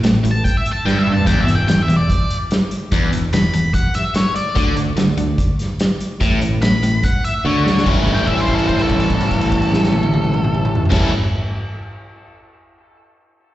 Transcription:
0.04 A1 A2, snare, closed hi-hat
0.24 A1 A2, closed hi-hat
0.31 A5
0.44 G5, kick, closed hi-hat
0.57 E5
0.66 closed hi-hat
0.71 A5
0.85 G1 G2 G5, snare
0.99 E5
1.07 mid tom
1.12 A5
1.17 floor tom
1.26 E1 E2 G5, kick, closed hi-hat, crash
1.41 E5
1.47 E1 E2, closed hi-hat
1.55 G5
1.68 E1 E2 G5, snare, closed hi-hat
1.82 E5
1.88 E1 E2, closed hi-hat
1.96 D5
2.10 kick, closed hi-hat
2.30 closed hi-hat
2.51 snare, closed hi-hat
2.71 closed hi-hat
2.92 E1 E2, kick, closed hi-hat
3.12 E1 E2, closed hi-hat
3.33 E1 E2 B5, snare, closed hi-hat
3.53 E1 E2, closed hi-hat
3.74 F#5, kick, closed hi-hat
3.94 E5, snare, closed hi-hat
4.14 C#5, snare, closed hi-hat
4.36 D5, closed hi-hat
4.55 D2 D3, kick, closed hi-hat
4.76 D2 D3, closed hi-hat
4.96 D2 D3, snare, closed hi-hat
5.17 D2 D3, closed hi-hat
5.38 kick, closed hi-hat
5.59 snare, closed hi-hat
5.79 snare, closed hi-hat
6.00 closed hi-hat
6.21 A1 A2, kick, closed hi-hat
6.41 A1 A2, closed hi-hat
6.62 A1 A2 B5, snare, closed hi-hat
6.83 A1 A2, closed hi-hat
7.03 F#5, kick, closed hi-hat
7.24 E5, closed hi-hat
7.45 D2 D3 C#5, high tom
7.65 C#5, snare
7.77 snare
7.86 A1 A2 E3 G3 C#4 E4, kick, crash
8.07 kick, crash
8.14 G5, crash
8.27 E5, kick, crash
8.38 C5, crash
8.48 kick, crash
8.54 A4
8.59 crash
8.68 C5, kick, crash
8.79 A4, crash
8.89 kick, crash
9.00 crash
9.10 kick, crash
9.20 crash
9.31 kick, crash
9.41 crash
9.52 kick, crash
9.62 crash
9.73 snare
9.84 snare
9.93 high tom
10.03 high tom
10.14 high tom
10.24 mid tom
10.34 mid tom
10.44 mid tom
10.54 mid tom
10.65 mid tom
10.75 floor tom
10.85 floor tom
10.90 A1 A2 E3 G3 C#4 A4, kick, snare, crash
10.94 E4

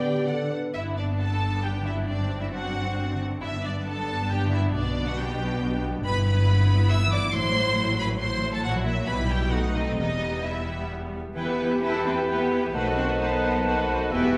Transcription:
Already playing: D3 G3 B3 G4 D5 G5
0.12 D4
0.27 D3 A4 D5 F#5
0.44 D4
0.51 B4
0.59 D4 D5
0.74 G1 G2 B3 D4 E4 E5
0.90 G3
0.97 D4 D5
1.05 D4
1.19 A4 B4 A5
1.35 G4
1.49 D4
1.64 G3 G4 G5
1.79 D3
1.86 E4 E5
1.94 G3
2.08 G2 C4 D4 D5
2.23 A3
2.38 D4 E4 E5
2.53 F#4 C5 F#5
2.68 A4
2.83 D4
2.98 A3
3.13 D3
3.28 A3
3.41 G1 G2 B3 D4 E4 E5
3.57 G3
3.64 D4 D5
3.71 D4
3.86 A4 B4 A5
4.01 G4
4.16 D4
4.30 G3 G4 G5
4.45 D3
4.52 E4 E5
4.59 G3
4.73 B1 B2 D4 D5
4.88 G3
5.03 D4
5.08 F#4 F#5
5.18 G4 B4 G5
5.32 G4
5.47 D4
5.61 G3
5.76 B3
5.90 G3
6.04 G1 G2 B3 E4 B4 B5
6.19 G3
6.26 B4 B5
6.34 E4
6.48 B4
6.62 G4
6.76 E4
6.90 G3 E5 E6
7.05 E3
7.13 D5 D6
7.20 G3
7.34 A1 A2 F#3 C5 C6
7.48 F#3
7.63 E4
7.78 A4
7.92 F#4
7.99 B4 B5
8.06 E4
8.21 F#3 C5 C6
8.36 E3
8.50 F#3 A4 A5
8.64 A#1 A#2 F#3 E4 F#4 F#5
8.79 F#3
8.85 E4 E5
8.93 E4 C#5
9.07 B1 B2 G3 E4 B4 B5
9.23 G3
9.29 G4 G5
9.37 E4 B4
9.52 B2 A3 D#4 F#4 F#5
9.68 A3
9.75 C4 D#4 D#5
9.83 D#4 B4
9.97 E1 E2 E3 G3 B3 D#4 D#5
10.13 B3
10.29 B4
10.44 G3 B3 E4 G4 E5
10.59 B4
10.74 B3
10.90 G3
11.05 B3
11.20 G3
11.35 E2 E3 B3 E4 G4 B4 E5 G5 B5
11.48 G4 B4 E5
11.60 E4 B4 G5
11.67 G4 E5
11.71 G4
11.83 E4 F#4 A4 B4 G5
11.95 G4 E5
12.06 C4 E4 B4 G5
12.18 G4 E5
12.29 G3 B3 E4 G4 B4 G5
12.41 G4 E5
12.52 E4 B4 G5
12.59 B3 G4
12.64 E5
12.73 B1 B2 D#3 A3 F#4 A4 B4 C5 D#5 F#5 A5
12.85 A4 B4 D#5
12.90 D#4
12.97 C4 B4 C5 F#5
13.09 A4 B4 D#5
13.19 B3 D#4 B4 C5 F#5
13.32 A4 B4 D#5
13.43 B4 C5 F#5
13.50 A3
13.55 A4 B4 D#5
13.66 F#3 F#4 B4 C5 F#5
13.78 D#4 A4 B4 D#5
13.89 B4 C5 F#5
13.96 A3 D#5
14.01 A4 B4
14.11 E1 E2 E3 B3 E4 G4 B4 E5 G5
14.23 G4 E5
14.27 E4
14.34 G5

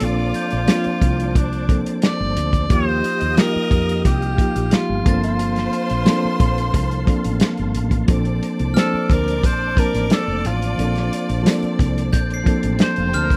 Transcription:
Already playing: D4 F4 C5 D5 A5 D6 A6 C7
0.00 A#1 F3 A#3 C4 D4 A4, closed hi-hat
0.04 F4
0.34 G6, closed hi-hat
0.51 A#1, closed hi-hat
0.66 F3 A#3 C4 D4, snare, closed hi-hat
0.70 F4
0.84 muted fretless electric bass stroke, closed hi-hat
1.01 C2, kick, closed hi-hat
1.20 closed hi-hat
1.35 D4, kick, closed hi-hat
1.53 closed hi-hat
1.68 F3 A#3 C4 D4 A4, kick, closed hi-hat
1.86 closed hi-hat
2.02 D5, snare, closed hi-hat
2.20 G1
2.36 D2, closed hi-hat
2.53 kick, closed hi-hat
2.68 D#2 F3 A#3 D#4 F4 G4 D#5 F5 D#6, kick, closed hi-hat
2.73 C5
3.04 closed hi-hat
3.21 D#2, closed hi-hat
3.37 F3 A#3 D#4 F4 G4 A#4, snare, closed hi-hat
3.55 muted fretless electric bass stroke
3.71 F2, kick, closed hi-hat
3.89 closed hi-hat
4.05 C2 G4, kick, closed hi-hat
4.22 closed hi-hat
4.37 F3 A#3 D#4 F4 G4, kick, closed hi-hat
4.56 A#1, closed hi-hat
4.71 F4, snare, closed hi-hat
4.89 G1
5.04 G1 F3 A#3 C4 D4 A4 C5 F5 A5 C6, kick, closed hi-hat
5.09 A6
5.24 F4, closed hi-hat
5.39 closed hi-hat
5.56 snare, closed hi-hat
5.73 closed hi-hat
5.90 A#1, closed hi-hat
6.05 F3 A#3 C4 D4 A4, snare, closed hi-hat
6.25 muted fretless electric bass stroke
6.40 A#1, kick, closed hi-hat
6.58 closed hi-hat
6.74 C2, kick, closed hi-hat
6.91 closed hi-hat
7.05 F3 A#3 C4 D4, kick, closed hi-hat
7.09 A4
7.24 A1, closed hi-hat
7.40 snare, closed hi-hat
7.57 G1, closed hi-hat
7.75 A1, closed hi-hat
7.91 kick, closed hi-hat
8.06 A#1 F3 A#3 C4 D4 A4 C5 D5 D6, kick, closed hi-hat
8.25 closed hi-hat
8.43 closed hi-hat
8.59 C2, closed hi-hat
8.74 F3 A#3 C4 D4 F6, snare, closed hi-hat
8.78 A4 C5
8.93 muted fretless electric bass stroke
9.10 D2 A#4, kick, closed hi-hat
9.28 closed hi-hat
9.43 A#1 C5, kick, closed hi-hat
9.75 F3 A#3 C4 D4 A#4, kick, closed hi-hat
9.80 A5
9.94 A1, closed hi-hat
10.10 A4, snare, closed hi-hat
10.28 F1
10.45 A1 F4, closed hi-hat
10.62 closed hi-hat
10.77 A#1 F3 A#3 C4 D4 A4, closed hi-hat
10.95 snare, closed hi-hat
11.13 closed hi-hat
11.29 A#1, closed hi-hat
11.43 F3 A#3 C4 D4 A4, snare, closed hi-hat
11.62 muted fretless electric bass stroke, closed hi-hat
11.79 C2, kick, closed hi-hat
11.98 closed hi-hat
12.13 A#1 G6, kick, closed hi-hat
12.30 C7, closed hi-hat
12.44 F3 A#3 C4 D4 A4, kick, closed hi-hat
12.63 A1, closed hi-hat
12.79 snare, closed hi-hat
12.83 C5
12.96 F1 F4 F5, closed hi-hat
13.07 G4 G5
13.13 D2 A4 A5 F6, closed hi-hat
13.23 A#4 A#5
13.30 C5 C6, kick, closed hi-hat

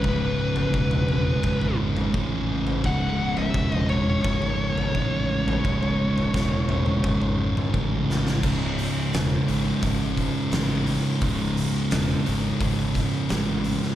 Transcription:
Already playing: B4
0.04 C#1 C#2 G#2 C#3, kick, floor tom
0.56 floor tom
0.74 E1, kick
0.91 floor tom, mid tom
1.08 G#2 C#3, floor tom
1.13 C#2
1.43 G#1, kick, floor tom
1.61 floor tom
1.97 floor tom
2.14 A1 C#2 G#2 C#3, kick
2.67 floor tom
2.84 C#1 C#2 G#2 C#3 F#5, kick, floor tom
3.37 E5, floor tom
3.54 E1, kick
3.72 D#5, floor tom, mid tom
3.89 C#2 G#2 C#3 C#5, floor tom
4.24 G#1, kick, floor tom
4.42 floor tom
4.78 floor tom
4.95 A1 C#2 G#2 C#3, kick
5.48 floor tom
5.64 C#1 C#2 G#2 C#3, kick, floor tom
5.83 floor tom
6.18 floor tom
6.34 E1, kick, snare
6.68 C#2 G#2 C#3, floor tom
6.86 mid tom
7.04 G#1, kick, floor tom
7.22 floor tom
7.57 floor tom
7.73 A1 C#2 G#2 C#3, kick, floor tom
8.10 snare
8.27 snare
8.43 C#1 C#2 G#2 C#3, kick, crash
8.78 open hi-hat
9.13 E1, snare, open hi-hat
9.48 G#1 C#2 G#2 C#3, open hi-hat
9.83 G#1, kick, open hi-hat
10.17 kick, open hi-hat
10.52 A1 C#2 G#2 C#3, snare, open hi-hat
10.87 open hi-hat
11.21 C#1 C#2 G#2, kick, open hi-hat
11.26 C#3
11.57 open hi-hat
11.91 E1, snare, open hi-hat
12.26 G#1 C#2 G#2 C#3, open hi-hat
12.60 G#1, kick, open hi-hat
12.95 kick, snare, open hi-hat
13.29 A1 C#2 G#2, snare, open hi-hat
13.34 C#3
13.64 open hi-hat
13.83 snare

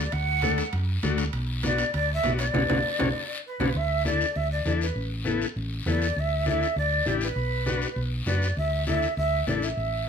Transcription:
Already playing: D5
0.12 D2 F#5, high conga, high timbale, long guiro
0.42 A3 D4 A4, high conga, high timbale, short guiro
0.58 high timbale, short guiro
0.73 F#2, high conga, high timbale, long guiro
1.03 D2 A3 D4 F#4, high conga, high timbale, short guiro
1.18 high timbale, short guiro
1.33 B1, high conga, high timbale, long guiro
1.63 B3 D4 F#4 D5, high conga, high timbale, short guiro
1.78 high timbale, short guiro
1.94 D2 D5, high conga, high timbale, long guiro
2.13 E5
2.24 B1 B3 D4 F#4, high conga, high timbale, low timbale, short guiro
2.38 D5, high timbale, short guiro
2.54 B1 C#4 D4 F#4, high conga, high timbale, long guiro
2.69 B1 C#4 D4 F#4, high conga, high timbale, long guiro
2.99 B1 C#4 D4 F#4, high conga, high timbale, long guiro
3.46 B4
3.60 B1 C#4 D4 F#4, high conga, high timbale, long guiro
3.75 D2 E5, high conga, long guiro
4.05 D4 E4 A4 D5, high conga, short guiro
4.21 short guiro
4.36 D2 E5, high conga, long guiro
4.51 D5
4.65 E2 D4 E4 A4 D5, high conga, short guiro
4.81 B4, short guiro
4.96 A1, high conga, long guiro
5.25 B3 E4 A4, high conga, short guiro
5.42 short guiro
5.56 A1, high conga, long guiro
5.86 E2 B3 E4 A4 D5, high conga, short guiro
6.02 short guiro
6.16 D2 E5, high conga, long guiro
6.46 D4 E4 A4 E5, high conga, short guiro
6.62 short guiro
6.76 D2 D5, high conga, long guiro
7.06 A1 D4 E4 G4 D5, high conga, short guiro
7.21 B4, short guiro
7.36 B1, high conga, long guiro
7.66 D4 F#4 B4, high conga, short guiro
7.82 short guiro
7.96 B1, high conga, long guiro
8.26 F#2 D4 F#4 B4 D5, high conga, short guiro
8.42 short guiro
8.57 D2 E5, high conga, long guiro
8.87 D4 E4 A4 E5, high conga, short guiro
9.02 short guiro
9.17 D2 E5, high conga, long guiro
9.47 A1 D4 E4 A4 D5, high conga, short guiro
9.62 E5, short guiro
9.77 A1, high conga, long guiro

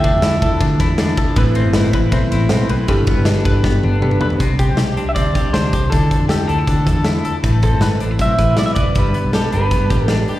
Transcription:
Already playing: D2 D3 F3 A3 D4 E4 A4 E5
0.04 D4, kick, ride
0.14 F2 F3 A3 E4
0.22 E4, snare, ride
0.41 D2 D3 F3 A3 E4 A4, kick, ride
0.61 D3 D4, kick, ride
0.80 E2 E4, kick, snare, ride
0.90 E4
0.97 D3 F3 A3 D4 E4, snare, ride
1.07 F3 A3 E4
1.17 D3 F3 A3 E4 A4, kick, ride
1.36 A1 A2 E3 A3 C4 E4 A4 B4, kick, ride
1.55 C4, ride
1.64 G1 A3 C4 E4 B4
1.73 C4 E4 A4 B4, snare, ride
1.93 A1 A3 C4 E4 B4, kick, ride
2.12 B1 B3 C4 E4 A4 C5, kick, ride
2.31 A1 C4 E4, snare, ride
2.49 B1 A3 C4 E4 A4 B4 C5, snare, ride
2.60 A3 C4 E4 B4
2.68 B1 A3 C4 E4 B4, ride
2.87 G1 G2 G3 A3 D4 E4 G4 A4 B4, kick, ride
3.07 B3, kick, ride
3.16 G1 D4 G4 B4
3.25 D4 G4 A4 B4, snare, ride
3.44 G2 A3 D4 G4 B4, kick, ride
3.56 E4
3.63 G2 B3 D4 G4 A4 B4, kick, snare
3.83 G1 D4, high tom
4.00 A3 B3 D4 G4 A4 B4, mid tom
4.09 D4 G4 B4, mid tom
4.19 A3 D4 G4 B4, floor tom
4.30 floor tom
4.36 C2 C3 G3 C4 D4 G4, kick
4.40 closed hi-hat
4.59 C4 G4, kick, closed hi-hat
4.69 B1
4.75 G3 C4 D4 G4, snare, closed hi-hat
4.95 C2 G3 C4 D4 G4, closed hi-hat
5.09 E5
5.15 D2 C4 D5, kick, closed hi-hat
5.33 C2 C3 G3 C4 D4 G4, kick, snare, closed hi-hat
5.53 D2 D4 C5, snare, closed hi-hat
5.61 C4 D4 G4
5.73 C2 G4, kick, closed hi-hat
5.90 D2 D3 F3 A3 E4 A4, kick, closed hi-hat
6.11 D4, kick, closed hi-hat
6.21 F2
6.27 D3 F3 A3 E4 G4 A4, snare, closed hi-hat
6.47 D2 D3 F3 A3 D4 E4 A4, closed hi-hat
6.58 E4
6.67 D3 D4, kick, closed hi-hat
6.85 E2 D3 F3 A3 E4 A4, kick, snare, closed hi-hat
7.04 E4, snare, closed hi-hat
7.13 F3 A3 E4
7.25 A4, closed hi-hat
7.41 A1 A2 A3 C4 E4 B4, kick, closed hi-hat
7.62 C4 A4, kick, closed hi-hat
7.73 G1
7.79 A3 C4 E4 B4, snare, closed hi-hat
7.99 A1 A3 C4 D4 E4 B4, closed hi-hat
8.11 E4
8.19 B1 C4 E5, kick, closed hi-hat
8.37 A1 A2 E3 A3 C4 E4 B4, kick, snare, closed hi-hat
8.57 B1 E4 D5, snare, closed hi-hat
8.66 A3 C4 E4 B4 E5
8.75 F1 B4 D5, kick, closed hi-hat
8.95 G1 G2 A3 D4 G4 B4, kick, closed hi-hat
9.14 B3, closed hi-hat
9.24 B1
9.33 A3 D4 G4 A4 B4, snare, closed hi-hat
9.52 G1 A3 D4 G4 B4, closed hi-hat
9.71 G2 B3, kick, closed hi-hat
9.90 A1 G3 A3 D4 G4 B4, kick, snare, closed hi-hat
10.07 D4 A4, snare, closed hi-hat
10.18 D4 G4 B4
10.28 G4, open hi-hat

